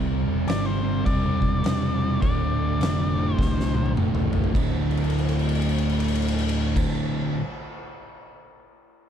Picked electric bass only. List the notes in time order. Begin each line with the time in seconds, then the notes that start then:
Already playing: C2
0.26 E1
0.48 G1
1.06 E1
1.63 E1
2.22 D1
2.79 F1
3.38 C2
3.96 F1
4.55 D1